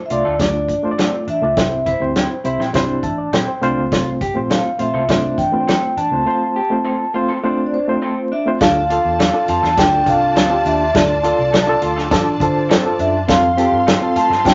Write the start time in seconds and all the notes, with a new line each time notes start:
0.06 E5, closed hi-hat
0.10 C2 A3 D4 F4 D5
0.25 D2 A3 D4 F4 A4
0.39 D2 A3 D4 F4 D5, kick, snare, closed hi-hat
0.68 A1, kick, closed hi-hat
0.83 A3 D4 F4 C5
0.91 D5
0.98 A3 C4 D4 F4 A4, snare, closed hi-hat
1.27 A1 D4 E5, closed hi-hat
1.42 C#2 A3 D4 F4 D5
1.56 C2 G3 C4 E4 C5, kick, snare, closed hi-hat
1.86 E4 C5, kick, closed hi-hat
2.00 D2 G3 C4 E4 C5
2.15 C4 E4 G4 C5, snare, closed hi-hat
2.44 C2 G3 C4 E4 C5, closed hi-hat
2.59 A#1 C4 E4 G4 C5, snare
2.73 C2 G3 C4 D4 E4 C5, kick, snare, closed hi-hat
3.03 A1 E5 A5, kick, closed hi-hat
3.18 D5
3.33 A#1 C4 E4 G4 C5 G5, snare, closed hi-hat
3.48 C5
3.61 C2 A3 C4 D4 F4 C5 F5, closed hi-hat
3.77 C#2
3.92 C2 F4, kick, snare, closed hi-hat
4.21 G4, kick, closed hi-hat
4.34 A#1 A3 C4 F4 C5
4.50 C4 F4 A4 C5 F5, snare, closed hi-hat
4.78 A#1 A3 C4 F4 C5 E5, closed hi-hat
4.94 C2 C4 F4 A4 C5
5.08 C2 A3 C4 D4 F4 C5, kick, snare, closed hi-hat
5.38 A1 G5, kick, closed hi-hat
5.52 A3 C4 F4 B4
5.60 C5
5.68 C4 F4 A4 C5, snare, closed hi-hat
5.97 A1 D4 A5, closed hi-hat
6.11 C#2 A3 C4 F4 C5
6.25 A3 C4 F4 C5
6.56 G4
6.70 A3 C4 F4 C5
6.84 C4 F4 A4 C5
7.14 A3 C4 F4 C5
7.29 C4 F4 A4 C5
7.43 A3 C4 D4 F4 C5
7.66 D5
7.74 C5
7.87 A3 C4 F4 C5
8.02 C4 F4 A4 C5
8.32 D4 E5
8.46 A3 C4 F4 C5
8.60 D2 D4 F4 A4 D5 F5 A5, kick, snare, closed hi-hat
8.90 D4 F4 A4, closed hi-hat
9.05 E2
9.19 A3 D4 F4 A4, snare, closed hi-hat
9.34 D4 F4 A4
9.48 F2 F4 A5, closed hi-hat
9.62 E2 A3 D4 F4 A4, snare
9.77 D2 D4 F4 A4 G5, kick, snare, closed hi-hat
10.06 C2 D4 F4 A4 F5, kick, closed hi-hat
10.36 D2 A3 C4 D4 F4 A4, snare, closed hi-hat
10.50 D4 F4 G4
10.65 D#2 D4 E5, closed hi-hat
10.94 D2 D4 F4 A4 D5, kick, snare, closed hi-hat
11.23 D4 F4 A4, closed hi-hat
11.39 C2
11.53 A3 D4 F4 A4, snare, closed hi-hat
11.67 D4 F4 A4
11.82 D2 F4, closed hi-hat
11.96 A3 D4 F4 A4, snare
12.11 A1 D4 F4 A4, kick, snare, closed hi-hat
12.40 D3 D4 F4 A4 C5, kick, closed hi-hat
12.69 G2 A3 C4 D4 F4 A4, snare, closed hi-hat
12.84 D4 F4 A4
12.99 F#2 D4 E5, closed hi-hat
13.28 F2 C4 F4 A4 F5 C6, kick, snare, closed hi-hat
13.57 C4 F4 G4 A4, closed hi-hat
13.72 G2
13.87 A3 C4 F4 A4, snare, closed hi-hat
14.01 C4 F4 A4
14.16 A2 F4 A5, closed hi-hat
14.30 G2 A3 C4 F4 A4, snare
14.45 F2 C4 D4 F4 A4 G5, kick, snare, closed hi-hat